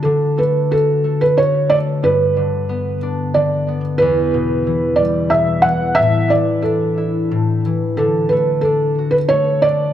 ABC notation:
X:1
M:3/4
L:1/16
Q:1/4=90
K:D
V:1 name="Felt piano"
A2 B2 A3 B c2 d2 | B6 z2 d3 z | B6 d2 e2 f2 | e2 d2 A6 z2 |
A2 B2 A3 B c2 d2 |]
V:2 name="Harp" clef=bass
D,2 A,2 F2 A,2 F2 A,2 | G,,2 D,2 B,2 D2 D,2 B,2 | E,,2 B,,2 E,2 G,2 B,,2 E,2 | A,,2 E,2 D2 E2 A,,2 E,2 |
D,2 A,2 D2 F2 A,2 D2 |]